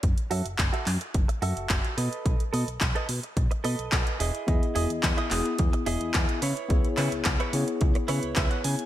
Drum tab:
HH |xxoxxxoxxxoxxxox|xxoxxxoxxxoxxxox|xxoxxxoxxxoxxxox|xxoxxxoxxxoxxxox|
CP |----x-x-----x---|----x-------x---|----x-x-----x---|--x-x-------x---|
BD |o---o---o---o---|o---o---o---o---|o---o---o---o---|o---o---o---o---|